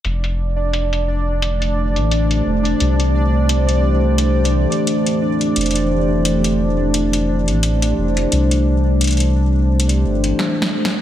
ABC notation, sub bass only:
X:1
M:4/4
L:1/16
Q:"Swing 16ths" 1/4=87
K:F
V:1 name="Sub bass" clef=bass
F,,,8- F,,,3 A,,,3 F,,,2 | C,,8- C,,3 z4 z | F,,,8- F,,,3 A,,,3 F,,,2 | C,,8- C,,2 G,,,2 z4 |]